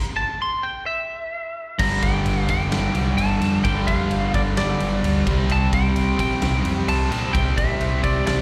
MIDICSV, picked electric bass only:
0, 0, Header, 1, 2, 480
1, 0, Start_track
1, 0, Tempo, 461894
1, 1866, Time_signature, 4, 2, 24, 8
1, 8746, End_track
2, 0, Start_track
2, 0, Title_t, "Picked electric bass"
2, 0, Program_c, 0, 34
2, 1866, Note_on_c, 0, 31, 100
2, 2041, Note_off_c, 0, 31, 0
2, 2101, Note_on_c, 0, 31, 82
2, 2278, Note_off_c, 0, 31, 0
2, 2348, Note_on_c, 0, 31, 95
2, 2522, Note_off_c, 0, 31, 0
2, 2587, Note_on_c, 0, 29, 93
2, 2762, Note_off_c, 0, 29, 0
2, 2819, Note_on_c, 0, 31, 91
2, 2997, Note_off_c, 0, 31, 0
2, 3067, Note_on_c, 0, 36, 84
2, 3242, Note_off_c, 0, 36, 0
2, 3298, Note_on_c, 0, 31, 111
2, 3476, Note_off_c, 0, 31, 0
2, 3536, Note_on_c, 0, 41, 91
2, 3716, Note_off_c, 0, 41, 0
2, 3791, Note_on_c, 0, 31, 98
2, 3965, Note_off_c, 0, 31, 0
2, 4030, Note_on_c, 0, 41, 84
2, 4204, Note_off_c, 0, 41, 0
2, 4266, Note_on_c, 0, 31, 100
2, 4442, Note_off_c, 0, 31, 0
2, 4511, Note_on_c, 0, 31, 92
2, 4685, Note_off_c, 0, 31, 0
2, 4744, Note_on_c, 0, 31, 96
2, 4921, Note_off_c, 0, 31, 0
2, 4996, Note_on_c, 0, 31, 94
2, 5168, Note_off_c, 0, 31, 0
2, 5228, Note_on_c, 0, 38, 104
2, 5403, Note_off_c, 0, 38, 0
2, 5478, Note_on_c, 0, 36, 94
2, 5650, Note_off_c, 0, 36, 0
2, 5702, Note_on_c, 0, 36, 97
2, 5879, Note_off_c, 0, 36, 0
2, 5957, Note_on_c, 0, 36, 78
2, 6129, Note_off_c, 0, 36, 0
2, 6190, Note_on_c, 0, 36, 95
2, 6364, Note_off_c, 0, 36, 0
2, 6432, Note_on_c, 0, 34, 85
2, 6605, Note_off_c, 0, 34, 0
2, 6667, Note_on_c, 0, 36, 97
2, 6842, Note_off_c, 0, 36, 0
2, 6912, Note_on_c, 0, 41, 89
2, 7085, Note_off_c, 0, 41, 0
2, 7148, Note_on_c, 0, 36, 99
2, 7322, Note_off_c, 0, 36, 0
2, 7385, Note_on_c, 0, 46, 91
2, 7560, Note_off_c, 0, 46, 0
2, 7636, Note_on_c, 0, 36, 96
2, 7806, Note_off_c, 0, 36, 0
2, 7875, Note_on_c, 0, 46, 78
2, 8046, Note_off_c, 0, 46, 0
2, 8104, Note_on_c, 0, 36, 90
2, 8278, Note_off_c, 0, 36, 0
2, 8353, Note_on_c, 0, 36, 77
2, 8523, Note_off_c, 0, 36, 0
2, 8586, Note_on_c, 0, 36, 87
2, 8746, Note_off_c, 0, 36, 0
2, 8746, End_track
0, 0, End_of_file